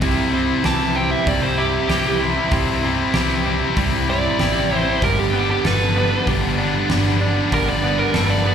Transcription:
0.01 C2 C3 G3 C4 E4, kick, open hi-hat
0.32 C3 G3 C4 E4
0.63 C2 C3 G3 C4 E4 G4 A5, snare, open hi-hat
0.95 C3 G3 C4 E4 G5
1.11 E5
1.26 C2 C3 G3 C4 E4 D5, kick, open hi-hat
1.43 C5
1.58 C3 G3 C4 E4 G4
1.89 C2 C3 G3 C4 E4 G4, snare, open hi-hat
2.20 C3 G3 C4 E4
2.51 C2 C3 G3 C4 E4, kick, open hi-hat
2.83 C3 G3 C4 E4
3.14 C2 C3 G3 C4 E4 G4, snare, open hi-hat
3.46 C3 G3 C4 E4
3.77 C2 C3 G3 C4 E4, kick, open hi-hat
4.08 C3 G3 C4 E4 D5
4.39 A1 C3 G3 C4 E4 G4, snare, open hi-hat
4.71 C3 G3 C4 E4
4.76 C5
5.02 G1 G2 D3 G3 B3 D4 A#4, kick, open hi-hat
5.19 G4
5.34 G2 D3 G3 B3 D4
5.51 G4
5.64 G1 G2 D3 G3 B3 D4 A4 B4, snare, open hi-hat
5.96 G2 D3 G3 B3 D4
6.27 G1 G2 D3 G3 B3 D4, kick, open hi-hat
6.58 G2 D3 G3 B3 D4
6.89 G1 G2 D3 G3 B3 D4, snare, open hi-hat
7.20 G2 D3 G3 B3 D4
7.51 G1 G2 D3 G3 B3 D4 A#4, kick, open hi-hat
7.68 D5
7.82 G2 D3 G3 B3 D4
7.99 A#4
8.14 G1 G2 D3 G3 B3 D4 A4, snare, open hi-hat
8.30 D5
8.45 G2 D3 G3 B3 D4

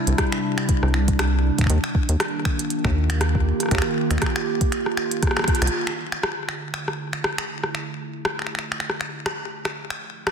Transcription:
Already playing: C3 G3 D4 E4
0.07 C2, closed hi-hat
0.18 kick, cross-stick, closed hi-hat
0.32 finger snap
0.58 finger snap
0.69 kick, closed hi-hat
0.83 C2, cross-stick
0.94 finger snap
1.08 kick, closed hi-hat
1.19 finger snap, cross-stick, closed hi-hat
1.59 kick, closed hi-hat
1.61 finger snap, kick
1.64 finger snap, kick
1.67 D#2 D#3, finger snap, closed hi-hat
1.82 A#3, finger snap
1.95 kick
2.09 D#2, closed hi-hat
2.20 finger snap, cross-stick, closed hi-hat
2.24 F4
2.45 finger snap, kick
2.59 G4, closed hi-hat
2.70 closed hi-hat
2.85 D#2, finger snap, kick, cross-stick
3.10 finger snap, closed hi-hat
3.21 cross-stick, closed hi-hat
3.35 kick
3.60 cross-stick, closed hi-hat
3.63 cross-stick
3.66 cross-stick
3.69 finger snap, cross-stick
3.71 D#2, finger snap, kick, cross-stick, closed hi-hat
3.75 finger snap, cross-stick
3.78 finger snap, cross-stick
3.82 cross-stick
4.11 D#2, finger snap, closed hi-hat
4.18 finger snap, kick, cross-stick, closed hi-hat
4.26 finger snap
4.36 finger snap
4.61 kick, closed hi-hat
4.72 finger snap, closed hi-hat
4.86 cross-stick
4.97 finger snap
5.11 closed hi-hat
5.23 kick, cross-stick, closed hi-hat
5.27 cross-stick
5.31 cross-stick
5.37 finger snap, cross-stick
5.39 cross-stick
5.44 kick, cross-stick, closed hi-hat
5.55 closed hi-hat
5.62 C2, finger snap, cross-stick, closed hi-hat
5.67 closed hi-hat
5.73 D3
5.79 A3
5.87 finger snap
6.05 E4
6.12 finger snap
6.23 cross-stick
6.49 finger snap
6.74 finger snap
6.88 cross-stick
7.13 finger snap
7.24 cross-stick
7.38 finger snap
7.64 cross-stick
7.75 finger snap
8.25 cross-stick
8.39 finger snap
8.42 finger snap
8.47 finger snap
8.55 finger snap
8.59 finger snap
8.72 finger snap
8.80 finger snap
8.90 cross-stick
9.01 finger snap
9.26 finger snap, cross-stick
9.65 finger snap, cross-stick
9.76 F3
9.90 finger snap
9.99 C4
10.09 G4
10.21 A4
10.27 finger snap, cross-stick

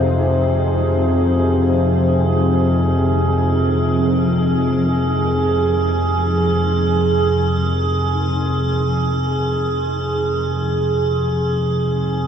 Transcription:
Already playing: F2 C3 F3 D#4 G#4 C5
1.03 A#4

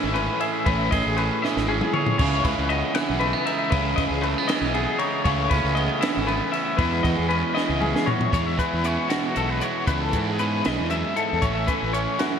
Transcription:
Already playing: A2 E3 A3 C#4 E4 G#4 E5
0.04 G#1
0.14 C#4 B4, ride
0.40 G#4 E5, ride
0.53 E5
0.65 A1 A2 E3 A3 C#4 B4, kick, ride
0.70 E4
0.91 A1 G#4 D#5, kick, ride
1.03 A1 G#4
1.17 C#4 B4, ride
1.42 E3 A3 C#4 E4 D#5, snare
1.46 A2 E3
1.57 G#1, snare
1.69 C#4 G#4
1.81 G#4, mid tom
1.93 G#4 C#5, mid tom
2.07 floor tom
2.18 C#2 C#3 G#3 C#5, kick, crash
2.23 C#4 E4
2.44 C#2 B4, kick, ride
2.59 C#2
2.69 B3 D#5, ride
2.95 C#3 E3 G#3 C#4 E4 F#5, snare, ride
3.10 B1
3.20 A3 B4, ride
3.33 B3
3.46 D#4 E5, ride
3.58 E5
3.70 C#2 C#3 G#3 C#4 E4 B4, kick, ride
3.96 C#2 D#5, kick, ride
4.08 C#2 G#4
4.22 A3 B4, ride
4.38 B3
4.47 C#3 E3 G#3 C#4 E4 D#5, snare, ride
4.62 B1
4.74 B3 G#4, ride
4.85 G#4
4.99 D#4 C#5, ride
5.24 C#2 C#3 A3 C#4 E4 C#5, kick, ride
5.50 C#2 C#4 B4, kick, ride
5.64 C#2
5.75 B3 D#5, ride
6.01 C#3 E3 A3 C#4 E4 E5, snare, ride
6.17 G#1
6.27 B3 B4, ride
6.52 C#4 E5, ride
6.65 E5
6.77 E2 E3 G#3 B3 E4 B4, kick, ride
7.03 E2 F#4 D#5, kick, ride
7.16 E2 G#4
7.29 C#4 B4, ride
7.53 E3 G#3 B3 E4 D#5, snare
7.69 C#2
7.80 C#4 G#4, mid tom
7.94 G#4, snare
8.06 F#4 C#5, floor tom
8.21 floor tom
8.31 E2 E3 G#3 B3 E4 C#5, kick, closed hi-hat
8.47 E5
8.57 E3 G#3 B3 E4 B4, kick, closed hi-hat
8.73 E2
8.84 E3 G#3 B3 C#4 E4 C#5, closed hi-hat
9.08 B2 E3 G#3 B3 E4 F#4, snare, closed hi-hat
9.35 B1 E3 G#3 B3 E4 F#4 A4, closed hi-hat
9.49 B4
9.61 E3 G#3 B3 E4 F#4 C#5, closed hi-hat
9.86 C#2 E2 E3 G#3 B3 E4 B4, kick, closed hi-hat
10.00 A4
10.12 G#2 E3 G#3 B3 E4, kick, closed hi-hat
10.27 G#4
10.39 E3 G#3 B3 C#4 E4 B4, closed hi-hat
10.65 B1 E2 E3 G#3 B3 E4 D#5, snare, closed hi-hat
10.81 E2
10.90 F#2 E3 G#3 B3 E4 E5, closed hi-hat
11.16 G#2 E3 G#3 B3 E4 A4, closed hi-hat
11.33 E2
11.42 A1 A2 E3 A3 C#4 E4 C#5, kick, closed hi-hat
11.55 E5
11.67 E3 A3 C#4 E4 B4, kick, closed hi-hat
11.83 A1
11.93 E3 A3 C#4 E4 C#5, closed hi-hat
12.18 F#2 E3 A3 C#4 E4 F#4, snare, closed hi-hat

